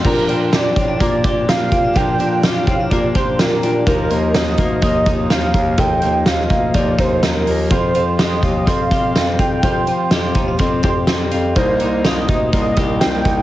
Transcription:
<<
  \new Staff \with { instrumentName = "Soft synth lead" } { \time 4/4 \key bes \major \tempo 4 = 125 bes'4 d''4 d''4 f''4 | g''4 f''4 d''8 c''8 bes'8. r16 | bes'4 ees''4 ees''4 f''4 | g''4 f''4 d''8 c''8 bes'8. r16 |
c''4 ees''4 f''4. g''8~ | g''4. r2 r8 | c''4 ees''4 ees''4 g''4 | }
  \new Staff \with { instrumentName = "Upright piano" } { \time 4/4 \key bes \major <d' g' bes'>1 | <d' g' bes'>2.~ <d' g' bes'>8 <d' g' bes'>8 | <ees' f' bes'>1 | <ees' f' a'>2~ <ees' f' a'>8 <ees' f' bes'>4. |
<f' g' c''>1 | <f' g' c''>2~ <f' g' c''>8 <f' g' c''>4. | <ees' bes' c''>2. <ees' bes' c''>4 | }
  \new Staff \with { instrumentName = "Clean electric guitar" } { \time 4/4 \key bes \major f8 d'8 g'8 c'16 d'16 bes8 g'8 bes8 c'16 d'16 | f8 d'8 g'8 c'16 d'16 bes8 g'8 bes8 d'8 | f8 bes8 ees'8 bes8 f8 ees'8 f8 bes8 | f8 bes8 ees'8 bes8 f8 ees'8 f8 bes8 |
f8 f'8 g'8 f'8 c'8 g'8 c'8 f'8 | f8 f'8 g'8 ees'16 f'16 c'8 g'8 c'8 f'8 | bes8 ees'8 f'16 g'16 ees'8 bes8 g'8 bes8 ees'8 | }
  \new Staff \with { instrumentName = "Twelve-string acoustic guitar" } { \time 4/4 \key bes \major <bes, d f bes d' g'>8 <bes, d f bes d' g'>8 <f bes d' g'>4 <f bes d' g'>8 <f bes d' g'>8. <f bes d' g'>8. | <bes, d f bes d' g'>8 <bes, d f bes d' g'>8 <f bes d' g'>4 <f bes d' g'>8 <f bes d' g'>8. <f bes d' g'>8. | <ees f bes ees'>8 <ees f bes ees'>8 <ees f bes ees'>4 <ees f bes ees'>8 <ees f bes ees'>8. <f bes ees'>8. | <ees f bes ees'>8 <ees f bes ees'>8 <ees f bes ees'>4 <ees f bes ees'>8 <ees f bes ees'>8. <f bes ees'>8. |
<f g c' f'>8 <f g c' f'>8 <f g c' f'>4 <f g c' f'>8 <f g c' f'>8. <g c' f'>8. | <f g c' f'>8 <f g c' f'>8 <f g c' f'>4 <f g c' f'>8 <f g c' f'>8. <g c' f'>8. | <c g bes ees'>8 <c g bes ees'>8 <c g bes ees'>4 <c g bes ees'>8 <c g bes ees'>8. <g bes ees'>8. | }
  \new Staff \with { instrumentName = "Bass clarinet" } { \clef bass \time 4/4 \key bes \major bes,8 bes,8 bes,8 a,8 bes,8 bes,8 bes,8 bes,8 | bes,8 bes,8 bes,8 a,8 bes,8 r8 bes,8 bes,8 | ees,8 ees,8 ees,8 d,8 ees,8 ees,8 ees,8 ees,8 | ees,8 ees,8 ees,8 d,8 ees,8 ees,8 ees,8 ees,8 |
f,8 f,8 f,8 ees,8 f,8 f,8 f,8 f,8 | f,8 r8 f,8 ees,8 f,8 f,8 f,8 f,8 | c,8 c,8 c,8 d,8 c,8 c,8 c,8 c,8 | }
  \new DrumStaff \with { instrumentName = "Drums" } \drummode { \time 4/4 <cymc bd>8 hh8 <hh sn>8 <hh bd>8 <hh bd>8 <hh bd>8 <hh sn>8 <hh bd>8 | <hh bd>8 hh8 <hh sn>8 <hh bd>8 <hh bd>8 <hh bd>8 <hh sn>8 hh8 | <hh bd>8 hh8 <hh sn>8 <hh bd>8 <hh bd>8 <hh bd>8 <hh sn>8 <hh bd>8 | <hh bd>8 hh8 <hh sn>8 <hh bd>8 <hh bd>8 <hh bd>8 <hh sn>8 hho8 |
<hh bd>8 hh8 <hh sn>8 <hh bd>8 <hh bd>8 <hh bd>8 <hh sn>8 <hh bd>8 | <hh bd>8 hh8 <hh sn>8 <hh bd>8 <hh bd>8 <hh bd>8 <hh sn>8 hh8 | <hh bd>8 hh8 <hh sn>8 <hh bd>8 <hh bd>8 <hh bd>8 <hh sn>8 <hh bd>8 | }
>>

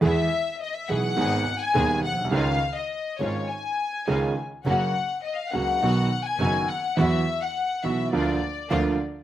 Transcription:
<<
  \new Staff \with { instrumentName = "Violin section" } { \time 4/4 \key cis \mixolydian \tempo 4 = 104 e''4 dis''16 e''16 fis''4~ fis''16 gis''8. fis''8 | eis''8. dis''8. cis''8 gis''4. r8 | fis''4 dis''16 eis''16 fis''4~ fis''16 gis''8. fis''8 | e''8. fis''8. e''8 d''4. r8 | }
  \new Staff \with { instrumentName = "String section" } { \time 4/4 \key cis \mixolydian <b e' gis'>8 r4 <b e' gis'>8 <b dis' gis'>8 r8 <b dis' gis'>8 r8 | <cis' dis' eis'>8 r4 <cis' dis' eis'>8 r4 <cis' dis' eis'>8 r8 | <ais cis' fis'>8 r4 <ais cis' fis'>8 <b dis' fis'>8 r8 <b dis' fis'>8 r8 | <b e' fis'>8 r4 <b e' fis'>8 <ais d' eis'>8 r8 <ais d' eis'>8 r8 | }
  \new Staff \with { instrumentName = "Grand piano" } { \clef bass \time 4/4 \key cis \mixolydian <e, e gis b gis'>8 r4 <b,, b, e gis b gis'>8 <gis,, gis, dis gis b gis'>8 r8 <dis,, dis, dis gis b gis'>8 r32 ais,,32 b,,32 bis,,32 | <cis, cis dis gis cis' eis'>8 r4 <gis,, gis, dis gis cis' eis'>8 r4 <cis, cis dis gis cis' eis'>8 r8 | <fis, cis fis ais fis'>8 r4 <cis, cis fis ais fis'>8 <b,, b, dis fis b fis'>8 r8 <fis,, fis, dis fis b fis'>8 r8 | <e, e fis b fis'>8 r4 <b,, b, e fis b fis'>8 <d, d eis ais eis'>8 r8 <d, d eis ais eis'>8 r8 | }
  \new Staff \with { instrumentName = "Double bass" } { \clef bass \time 4/4 \key cis \mixolydian e,8 r4 b,,8 gis,,8 r8 dis,8 b,,8 | cis,8 r4 gis,,8 r4 cis,8 r8 | fis,,8 r4 cis,8 b,,8 r8 fis,,8 r8 | e,8 r4 b,,8 d,8 r8 d,8 r8 | }
>>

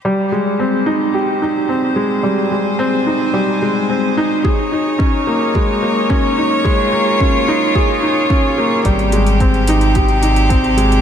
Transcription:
<<
  \new Staff \with { instrumentName = "String quartet" } { \time 4/4 \key aes \major \tempo 4 = 109 << { c''1~ | c''1 | des''1~ | des''1 |
<c g'>1 | } \\ { g'1 | aes''1 | ees'1 | f'1 |
r1 | } >> }
  \new Staff \with { instrumentName = "Felt piano" } { \time 4/4 \key aes \major g8 aes8 c'8 ees'8 g'8 ees'8 c'8 aes8 | g8 aes8 c'8 ees'8 g8 aes8 c'8 ees'8 | aes'8 ees'8 des'8 bes8 aes8 bes8 des'8 ees'8 | aes8 bes8 des'8 ees'8 aes'8 ees'8 des'8 bes8 |
g8 aes8 c'8 ees'8 g'8 ees'8 c'8 aes8 | }
  \new Staff \with { instrumentName = "Sub bass" } { \clef bass \time 4/4 \key aes \major r1 | r1 | r1 | r1 |
aes,,1 | }
  \new DrumStaff \with { instrumentName = "Drums" } \drummode { \time 4/4 r4 r4 r4 r4 | r4 r4 r4 r4 | bd4 bd4 bd4 bd4 | bd4 bd4 bd4 bd4 |
<hh bd>16 hh16 hh16 hh16 <hh bd>16 hh16 hh16 hh16 <hh bd>16 hh16 hh16 hh16 <hh bd>16 hh16 hh16 hh16 | }
>>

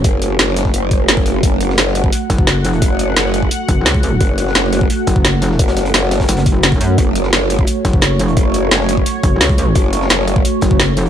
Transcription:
<<
  \new Staff \with { instrumentName = "Analog synth pad" } { \time 4/4 \key fis \minor \tempo 4 = 173 << { cis''1 | fis''1~ | fis''1~ | fis''1~ |
fis''1 | cis''1~ | cis''1~ | cis''1 | } \\ { <a fis'>1~ | <a fis'>1~ | <a fis'>1~ | <a fis'>1~ |
<a fis'>1~ | <a fis'>1~ | <a fis'>1~ | <a fis'>1 | } >> }
  \new Staff \with { instrumentName = "Wobble bass" } { \clef bass \time 4/4 \key fis \minor fis,,4 fis,,4 fis,,2 | fis,,4 fis,,4 r2 | fis,,4 fis,,4 r2 | fis,,4 fis,,4 r2 |
fis,,4 fis,,4 r2 | fis,,4 fis,,4 r2 | fis,,4 fis,,4 r2 | fis,,4 fis,,4 r2 | }
  \new Staff \with { instrumentName = "Wobble bass" } { \clef bass \time 4/4 \key fis \minor r1 | r2 r8 fis,,4. | r2 r8 fis,,8 cis,4 | r2 r8 fis,,4. |
r2 fis,,4. fis,8 | r2 r8 fis,,4. | r2 r8 fis,,8 cis,4 | r2 r8 fis,,4. | }
  \new DrumStaff \with { instrumentName = "Drums" } \drummode { \time 4/4 <hh bd>8 hh8 <hh sn>16 sn16 <hh sn>16 <bd sn>16 hh8 <hh bd>8 <hh sn>16 <hh bd>16 hh8 | <hh bd>8 hh16 sn16 <hh sn>16 sn16 hh16 bd16 hh8 <hh bd sn>16 bd16 <hh sn>8 <hh sn>16 hh16 | <hh bd>8 hh8 <hh sn>16 sn16 hh16 bd16 hh8 <hh bd>8 <hh sn>16 bd16 hh8 | <hh bd>8 hh16 sn16 <hh sn>16 sn16 hh16 bd16 hh8 <hh bd sn>16 bd16 <hh sn>8 <hh sn>16 sn16 |
<hh bd>16 <hh sn>16 <hh sn>16 hh16 <hh sn>16 sn16 <hh sn>16 <hh bd sn>16 <hh sn>16 <hh sn>16 <hh bd>8 <hh sn>16 <hh bd>16 hh8 | <hh bd>8 hh16 sn16 <hh sn>16 sn16 hh16 bd16 hh8 <hh bd sn>16 bd16 <hh sn>8 <hh sn>16 hh16 | <hh bd>8 hh8 <hh sn>16 sn16 hh16 bd16 hh8 <hh bd>8 <hh sn>16 bd16 hh8 | <hh bd>8 hh16 sn16 <hh sn>16 sn16 hh16 bd16 hh8 <hh bd sn>16 bd16 <hh sn>8 <hh sn>16 hh16 | }
>>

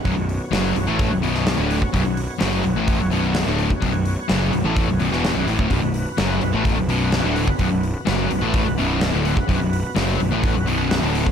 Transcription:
<<
  \new Staff \with { instrumentName = "Tonewheel organ" } { \time 4/4 \key b \minor \tempo 4 = 127 << { cis''1~ | cis''1~ | cis''1 | b'1~ |
b'1~ | b'1 | } \\ { <b fis'>1~ | <b fis'>1~ | <b fis'>1~ | <b fis'>1~ |
<b fis'>1~ | <b fis'>1 | } >> }
  \new Staff \with { instrumentName = "Distorted electric guitar" } { \clef bass \time 4/4 \key b \minor <b,, fis,>16 <b,, fis,>8 r16 <fis, cis fis>8 <b,, fis,>16 <a, e a>8 <b,, fis,>16 <b,, fis, b,>8. <d, a, d>8 r16 | <b,, fis,>16 <b,, fis,>8 r16 <fis, cis fis>8 <b,, fis,>16 <a, e a>8 <b,, fis,>16 <b,, fis, b,>8. <d, a, d>8 r16 | <b,, fis,>16 <b,, fis,>8 r16 <fis, cis fis>8 <b,, fis,>16 <a, e a>8 <b,, fis,>16 <b,, fis,>16 <e, b, e>8 <b,, fis,>16 <a, e>16 <d, a,>16 | <b,, fis,>16 <b,, fis,>8 r16 <fis, cis fis>8 <b,, fis,>16 <a, e a>8 <b,, fis,>16 <b,, fis, b,>8. <d, a, d>8 r16 |
<b,, fis,>16 <b,, fis,>8 r16 <fis, cis fis>8 <b,, fis,>16 <a, e a>8 <b,, fis,>16 <b,, fis, b,>8. <d, a, d>8 r16 | <b,, fis,>16 <b,, fis,>8 r16 <fis, cis fis>8 <b,, fis,>16 <a, e a>8 <b,, fis,>16 <b,, fis, b,>8. <d, a, d>8 r16 | }
  \new Staff \with { instrumentName = "Overdriven electric guitar" } { \clef bass \time 4/4 \key b \minor <b,, fis,>16 <b,, fis,>8 r16 <fis, cis fis>8 <b,, fis,>16 <a, e a>8 <b,, fis,>16 <b,, fis, b,>8. <d, a, d>8 r16 | <b,, fis,>16 <b,, fis,>8 r16 <fis, cis fis>8 <b,, fis,>16 <a, e a>8 <b,, fis,>16 <b,, fis, b,>8. <d, a, d>8 r16 | <b,, fis,>16 <b,, fis,>8 r16 <fis, cis fis>8 <b,, fis,>16 <a, e a>8 <b,, fis,>16 <b,, fis,>16 <e, b, e>8 <b,, fis,>16 <a, e>16 <d, a,>16 | <b,, fis,>16 <b,, fis,>8 r16 <fis, cis fis>8 <b,, fis,>16 <a, e a>8 <b,, fis,>16 <b,, fis, b,>8. <d, a, d>8 r16 |
<b,, fis,>16 <b,, fis,>8 r16 <fis, cis fis>8 <b,, fis,>16 <a, e a>8 <b,, fis,>16 <b,, fis, b,>8. <d, a, d>8 r16 | <b,, fis,>16 <b,, fis,>8 r16 <fis, cis fis>8 <b,, fis,>16 <a, e a>8 <b,, fis,>16 <b,, fis, b,>8. <d, a, d>8 r16 | }
  \new Staff \with { instrumentName = "Picked electric bass" } { \clef bass \time 4/4 \key b \minor b,,,16 b,,,8 r16 fis,,8 b,,,16 a,,8 b,,,16 b,,,8. d,,8 r16 | b,,,16 b,,,8 r16 fis,,8 b,,,16 a,,8 b,,,16 b,,,8. d,,8 r16 | b,,,16 b,,,8 r16 fis,,8 b,,,16 a,,8 b,,,16 b,,,16 e,,8 b,,,16 a,,16 d,,16 | b,,,16 b,,,8 r16 fis,,8 b,,,16 a,,8 b,,,16 b,,,8. d,,8 r16 |
b,,,16 b,,,8 r16 fis,,8 b,,,16 a,,8 b,,,16 b,,,8. d,,8 r16 | b,,,16 b,,,8 r16 fis,,8 b,,,16 a,,8 b,,,16 b,,,8. d,,8 r16 | }
  \new DrumStaff \with { instrumentName = "Drums" } \drummode { \time 4/4 <hho bd>8 hho8 <hho sn>8 hho8 <hho bd>8 hho16 sn16 <hho sn>8 hho16 bd16 | <hho bd>8 hho8 <hho sn>8 hho8 <hho bd>8 hho8 <hho sn>16 sn16 hho16 bd16 | <hho bd>8 hho8 <hho sn>8 hho8 <hho bd>8 hho16 sn16 <hho sn>8 hho16 bd16 | <hho bd>8 hho8 <hho sn>8 hho8 <hho bd>8 hho8 <hho sn>8 hho16 bd16 |
<hho bd>8 hho8 <hho sn>8 hho8 <hho bd>8 hho8 <hho sn>8 hho16 bd16 | <hho bd>8 hho8 <hho sn>8 hho8 <hho bd>8 hho8 <hho sn>8 hho16 bd16 | }
>>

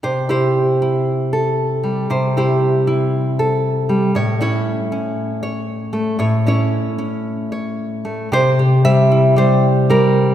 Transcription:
\new Staff \with { instrumentName = "Nylon-string guitar" } { \time 4/4 \key c \mixolydian \tempo 4 = 116 << { c2.~ c8 g8 | c2.~ c8 g8 | a,2.~ a,8 a8 | a,2.~ a,8 a8 |
<c c''>4 <g e''>4 <g c''>4 <g bes'>4 | } \\ { c''8 <e' g' c''>4 e'4 a'4. | c''8 <e' g' c''>4 e'4 a'4. | cis''8 <cis' e' cis''>4 cis'4 cis''4. | cis''8 <cis' e' cis''>4 cis'4 cis''4. |
r8 g'4 e'2~ e'8 | } >> }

